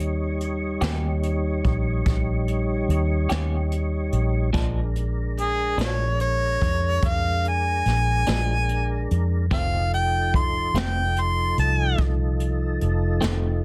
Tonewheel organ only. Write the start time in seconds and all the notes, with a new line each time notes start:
Already playing: G3 D#4 C#5
4.53 G#3 D4 A#4
9.51 F3 D#4 A4